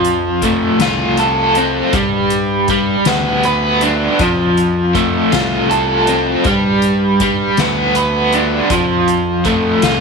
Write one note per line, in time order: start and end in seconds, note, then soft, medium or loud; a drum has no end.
0.00 0.68 F2 medium
0.00 1.56 F3 medium
0.05 closed hi-hat medium
0.42 1.93 A3 medium
0.42 kick medium
0.42 closed hi-hat medium
0.79 1.81 C2 medium
0.79 1.94 F4 medium
0.79 snare loud
0.79 closed hi-hat loud
1.17 1.94 A4 medium
1.17 closed hi-hat medium
1.55 1.94 C4 medium
1.55 closed hi-hat medium
1.93 2.95 G2 medium
1.93 2.69 G3 medium
1.93 kick loud
1.93 closed hi-hat loud
2.30 closed hi-hat medium
2.68 4.20 G3 medium
2.68 kick medium
2.68 closed hi-hat medium
3.05 4.07 D2 medium
3.05 4.20 B3 medium
3.05 snare loud
3.05 closed hi-hat loud
3.43 4.20 B4 medium
3.43 closed hi-hat medium
3.81 4.20 D4 medium
3.81 closed hi-hat medium
4.19 5.21 F2 medium
4.19 6.08 F3 medium
4.19 kick loud
4.19 closed hi-hat medium
4.57 closed hi-hat medium
4.95 6.45 A3 medium
4.95 kick medium
4.95 closed hi-hat medium
5.32 6.34 C2 medium
5.32 6.45 F4 medium
5.32 snare loud
5.32 closed hi-hat medium
5.70 6.45 A4 medium
5.70 closed hi-hat medium
6.07 6.46 C4 medium
6.07 closed hi-hat medium
6.44 7.46 G2 medium
6.44 7.21 G3 medium
6.44 kick loud
6.44 closed hi-hat medium
6.82 closed hi-hat medium
7.20 8.71 G3 medium
7.20 kick medium
7.20 closed hi-hat medium
7.57 8.59 D2 medium
7.57 8.72 B3 medium
7.57 snare loud
7.57 closed hi-hat medium
7.95 8.71 B4 medium
7.95 closed hi-hat medium
8.33 8.71 D4 medium
8.33 closed hi-hat medium
8.70 9.72 F2 loud
8.70 10.00 F3 medium
8.70 kick loud
8.70 closed hi-hat loud
9.08 closed hi-hat medium
9.45 10.00 A3 medium
9.45 kick medium
9.45 closed hi-hat medium
9.82 10.00 C2 medium
9.82 10.00 F4 medium
9.82 snare loud
9.82 closed hi-hat medium